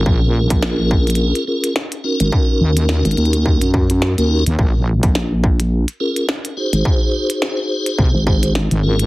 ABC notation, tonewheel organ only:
X:1
M:4/4
L:1/16
Q:"Swing 16ths" 1/4=106
K:Abmix
V:1 name="Tonewheel organ"
[DFAB]8- [DFAB]2 [DFAB]2 z2 [DEGB]2- | [DEGB]8- [DEGB]2 z3 [DEGB]2 z | z8 z2 [DFAB]2 z2 [EGAc]2- | [EGAc]8- [EGAc]2 [EGAc]2 z2 [DFAB]2 |]